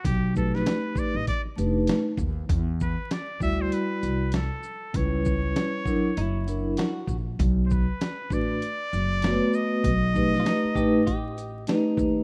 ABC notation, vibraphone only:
X:1
M:4/4
L:1/8
Q:"Swing 16ths" 1/4=98
K:Bphr
V:1 name="Vibraphone"
z [A,^DGB]3 z [A,=D^DGB] z2 | z3 [G,EFd]3 z2 | [G,^CEB]3 [F,DE^A] z [F,DEA] z2 | z3 [A,DFB] z2 [A,B,FB^c]2 |
z [A,^DGB]2 [A,DGB] z2 [A,DGB]2 |]